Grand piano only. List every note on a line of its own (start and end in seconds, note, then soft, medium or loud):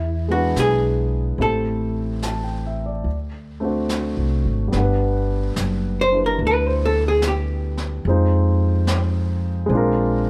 0.28 1.39 G#3 soft
0.28 1.40 B3 soft
0.28 1.41 D4 soft
0.28 1.38 E4 soft
0.33 1.41 B4 soft
1.38 3.05 A3 soft
1.38 3.05 C4 soft
1.38 3.06 E4 soft
1.38 3.06 G4 soft
1.38 3.06 C5 soft
2.24 2.62 A5 soft
2.44 2.79 G5 soft
2.66 2.91 E5 soft
2.86 3.15 D5 soft
3.60 4.72 A3 soft
3.60 4.72 C4 soft
3.60 4.72 D4 soft
3.60 4.74 F#4 soft
3.66 4.75 C5 soft
4.68 8.02 G3 soft
4.68 8.04 B3 soft
4.74 6.11 D4 soft
4.74 8.07 F#5 soft
4.80 6.15 B4 soft
6.12 8.05 D4 soft
6.12 8.05 E4 soft
6.12 8.06 G4 soft
6.16 8.07 B4 soft
8.07 9.65 G#3 soft
8.07 9.67 C4 soft
8.07 9.72 D#4 soft
8.07 9.72 F4 soft
8.07 9.72 C5 medium
9.66 10.30 G#3 medium
9.66 10.30 C4 soft
9.71 10.30 D4 soft
9.71 10.30 F4 soft
9.77 10.30 A#4 medium